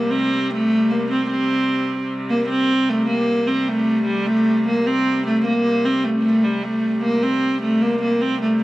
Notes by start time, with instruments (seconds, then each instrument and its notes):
Already playing: hurdy-gurdy C3 G3, viola da gamba A#3
0.10 viola da gamba C4
0.51 viola da gamba A3
0.90 viola da gamba A#3
1.11 viola da gamba C4
1.30 viola da gamba C4
2.30 viola da gamba A#3
2.49 hurdy-gurdy C3 G3, viola da gamba C4
2.89 viola da gamba A3
3.08 viola da gamba A#3
3.47 viola da gamba C4
3.68 viola da gamba A3
4.06 viola da gamba G3
4.27 viola da gamba A3
4.68 viola da gamba A#3
4.87 viola da gamba C4
5.26 viola da gamba A3
5.45 viola da gamba A#3
5.85 viola da gamba C4
6.04 viola da gamba A3
6.24 viola da gamba A3
6.44 viola da gamba G3
6.64 viola da gamba A3
7.03 viola da gamba A#3
7.23 hurdy-gurdy C3 G3, viola da gamba C4
7.62 viola da gamba A3
7.82 viola da gamba A#3
8.02 viola da gamba A#3
8.21 viola da gamba C4
8.42 viola da gamba A3